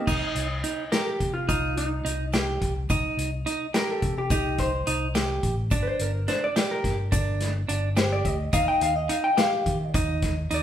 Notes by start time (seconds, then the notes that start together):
0.07 C2 D#4, kick, crash, shaker
0.35 C2, closed hi-hat
0.64 D#4, closed hi-hat
0.92 G4 A#4, snare, closed hi-hat, shaker
1.06 G4
1.20 C3, kick, closed hi-hat
1.34 F4
1.49 C2 D#4 F4, kick, closed hi-hat, shaker
1.77 D#4, closed hi-hat
2.05 C2 D#4, closed hi-hat
2.33 G4, snare, closed hi-hat, shaker
2.61 C2, kick, closed hi-hat
2.90 C2 D#4, kick, closed hi-hat, shaker
3.17 C2, closed hi-hat
3.46 D#4, closed hi-hat
3.74 G4 A#4, snare, closed hi-hat, shaker
3.91 A4
4.02 C3, kick, closed hi-hat
4.18 G4
4.30 C2 D#4 G4, kick, closed hi-hat, shaker
4.58 C5, kick, closed hi-hat
4.87 C2 D#4, closed hi-hat, shaker
5.15 G4, snare, closed hi-hat, shaker
5.43 A1, kick, closed hi-hat, shaker
5.71 G1 D4, kick, closed hi-hat, shaker
5.83 B4
5.87 C5
6.00 G1 A#4, closed hi-hat
6.28 D4 C5, snare, closed hi-hat
6.44 D5
6.56 G4, snare, closed hi-hat, shaker
6.71 A#4
6.84 G2, kick, snare, closed hi-hat
7.12 G1 D4, kick, closed hi-hat, shaker
7.41 snare, closed hi-hat
7.68 G1 D4, closed hi-hat
7.97 G4 C5, snare, closed hi-hat, shaker
8.13 D5
8.25 D2 D#5, kick, closed hi-hat
8.53 D#2 D#4 F5, kick, closed hi-hat, shaker
8.68 G5
8.81 D#2 F5, closed hi-hat
8.96 D#5
9.09 D#4 F5, closed hi-hat
9.24 G5
9.37 G4 F5, snare, closed hi-hat, shaker
9.66 D#3, kick, closed hi-hat
9.94 D#2 D#4, kick, closed hi-hat, shaker
10.22 kick, snare, closed hi-hat, shaker
10.51 D#2 D#4 D5, closed hi-hat, shaker